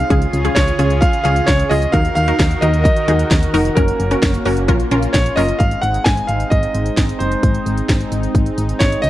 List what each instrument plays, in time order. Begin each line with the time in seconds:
Already playing: grand piano F5
0.10 fm bass C#2, analog synth pad C#3 C#4 F4 G#4, synth pluck C#4 F4 G#4, kick, closed hi-hat
0.22 closed hi-hat
0.33 fm bass C#2, closed hi-hat
0.45 synth pluck C#4 F4 G#4, closed hi-hat
0.55 fm bass C#2, grand piano C#5, kick, snare, closed hi-hat
0.68 closed hi-hat
0.79 fm bass C#2, synth pluck C#4 F4 G#4, closed hi-hat
0.90 closed hi-hat
1.01 grand piano F5, kick, closed hi-hat
1.13 closed hi-hat
1.24 fm bass C#2, synth pluck C#4 F4 G#4, grand piano F5, closed hi-hat
1.36 closed hi-hat
1.46 fm bass C#2, grand piano C#5, kick, snare, closed hi-hat
1.59 closed hi-hat
1.70 fm bass C#2, synth pluck C#4 F4 G#4, grand piano D#5, open hi-hat
1.82 closed hi-hat
1.92 fm bass D#2, analog synth pad D#3 D#4 F#4 A#4, synth pluck D#4 F#4 A#4, grand piano F5, kick, closed hi-hat
2.05 closed hi-hat
2.15 fm bass D#2, grand piano F5, closed hi-hat
2.28 synth pluck D#4 F#4 A#4, closed hi-hat
2.39 fm bass D#2, kick, snare, closed hi-hat
2.51 closed hi-hat
2.61 fm bass D#2, synth pluck D#4 F#4 A#4, grand piano D#5, closed hi-hat
2.74 closed hi-hat
2.84 grand piano D#5, kick, closed hi-hat
2.96 closed hi-hat
3.08 fm bass D#2, synth pluck D#4 F#4 G#4, closed hi-hat
3.19 closed hi-hat
3.31 fm bass D#2, kick, snare, closed hi-hat
3.43 closed hi-hat
3.54 fm bass F1, synth pluck D#4 F#4 A#4, open hi-hat
3.65 closed hi-hat
3.75 fm bass F#1, analog synth pad A#3 C#4, synth pluck C#4 F#4 A#4, grand piano A#4, kick, closed hi-hat
3.88 closed hi-hat
4.00 fm bass F#1, closed hi-hat
4.11 synth pluck C#4 F#4 A#4, closed hi-hat
4.23 fm bass F#1, kick, snare, closed hi-hat
4.34 closed hi-hat
4.45 fm bass F#1, synth pluck C#4 F#4 A#4, open hi-hat
4.57 closed hi-hat
4.68 fm bass A#1, analog synth pad C#4 F4, synth pluck C#4 F4 A#4, kick, closed hi-hat
4.80 closed hi-hat
4.91 fm bass A#1, synth pluck C#4 F4 A#4, closed hi-hat
5.03 closed hi-hat
5.13 fm bass A#1, grand piano C#5, kick, snare, closed hi-hat
5.26 closed hi-hat
5.36 fm bass F#1, synth pluck C#4 F4 A#4, grand piano D#5, open hi-hat
5.48 closed hi-hat
5.59 fm bass G#1, analog synth pad G#3 C4 D#4, grand piano F5, kick, closed hi-hat
5.71 closed hi-hat
5.82 fm bass G#1, grand piano F#5, closed hi-hat
5.94 closed hi-hat
6.04 fm bass G#1, grand piano G#5, kick, snare, closed hi-hat
6.17 closed hi-hat
6.27 fm bass G#1, grand piano F5, closed hi-hat
6.40 closed hi-hat
6.50 fm bass G#1, grand piano D#5, kick, closed hi-hat
6.63 closed hi-hat
6.74 fm bass G#1, closed hi-hat
6.86 closed hi-hat
6.97 fm bass G#1, kick, snare, closed hi-hat
7.09 closed hi-hat
7.19 fm bass F#1, grand piano C5, closed hi-hat
7.32 closed hi-hat
7.43 fm bass G#1, kick, closed hi-hat
7.55 closed hi-hat
7.66 fm bass G#1, closed hi-hat
7.77 closed hi-hat
7.89 fm bass G#1, kick, snare, closed hi-hat
8.01 closed hi-hat
8.12 fm bass G#1, closed hi-hat
8.23 closed hi-hat
8.35 fm bass G#1, kick, closed hi-hat
8.46 closed hi-hat
8.58 fm bass G#1, closed hi-hat
8.69 closed hi-hat
8.79 fm bass G#1, grand piano C#5, kick, snare, closed hi-hat
8.92 closed hi-hat
9.02 fm bass C#2, grand piano D#5, closed hi-hat